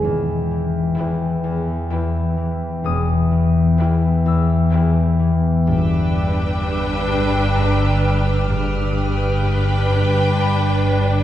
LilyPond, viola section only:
\new Staff \with { instrumentName = "Viola section" } { \time 3/4 \key e \lydian \tempo 4 = 64 r4 <e' b'>4 <e' b'>4 | r4 <e' b'>4 <e' b'>4 | <d' b'>2. | <d' b'>2. | }